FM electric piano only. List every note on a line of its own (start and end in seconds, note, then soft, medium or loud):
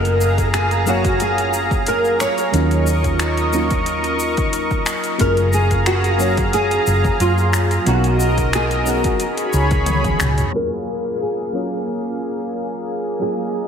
0.00 0.83 F#3 medium
0.00 0.83 A#3 medium
0.00 0.83 C#4 medium
0.00 0.84 F4 medium
0.00 0.84 G#4 medium
0.86 2.49 F#3 medium
0.86 2.50 A#3 medium
0.86 2.50 C#4 medium
0.86 2.51 C#5 medium
0.86 2.50 F5 medium
2.52 3.49 F#3 medium
2.52 3.49 A#3 medium
2.52 3.50 C#4 medium
2.52 3.50 D#4 medium
2.52 3.51 F4 medium
3.52 5.16 F#3 medium
3.52 5.16 A#3 medium
3.52 5.17 C#4 medium
3.52 5.17 D#4 medium
3.52 5.17 F4 medium
5.18 6.15 F#3 medium
5.18 6.16 A#3 medium
5.18 6.16 C#4 medium
5.18 6.17 F4 medium
5.18 6.17 G#4 medium
6.18 7.82 F#3 medium
6.18 7.82 A#3 medium
6.18 7.83 C#4 medium
6.18 7.84 C#5 loud
6.18 7.83 F5 medium
7.85 8.82 F#3 medium
7.85 8.83 B3 medium
7.85 8.83 C#4 medium
7.85 8.84 D#4 medium
7.85 8.84 A#4 loud
8.85 10.49 B3 medium
8.85 10.49 C#4 medium
8.85 10.50 D#4 medium
8.85 10.50 F#4 medium
8.85 10.50 G#4 medium
10.52 11.49 F#3 medium
10.52 11.49 A#3 medium
10.52 11.50 C#4 medium
10.52 11.50 F4 medium
10.52 11.51 G#4 medium
11.53 13.16 F#3 medium
11.53 13.16 A#3 medium
11.53 13.17 C#4 medium
11.53 13.17 F4 medium
11.53 13.17 C#5 medium
13.19 13.68 F#3 medium
13.19 13.68 A#3 medium
13.19 13.68 C#4 medium
13.19 13.68 F4 medium
13.19 13.68 G#4 medium